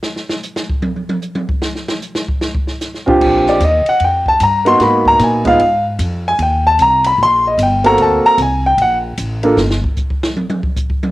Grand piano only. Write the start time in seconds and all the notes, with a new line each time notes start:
3.06 A#2 C4 D4 F4 G4
3.49 D5
3.64 D#5
3.89 F#5
4.04 G5
4.28 A5
4.43 A#5
4.65 A#3 B3 D#4 F#4 C6
4.79 A#3 B3 D#4 F#4 B5
5.08 A#5
5.24 G#5
5.44 G#3 B3 D#4 F4 F5
6.28 G#5
6.43 G5
6.67 A5
6.82 A#5
7.07 B5
7.23 C6
7.47 D#5
7.63 G5
7.84 A#3 C4 F#4 A4 A#5
8.02 A5
8.26 A#5
8.42 G#5
8.66 G5
8.82 F#5
9.43 A#3 D4 F4 A4